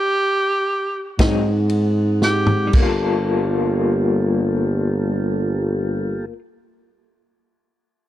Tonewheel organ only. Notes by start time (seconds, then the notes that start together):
1.19 G#3 C4 D#4 F#5
2.72 A#3 F4 G4 A4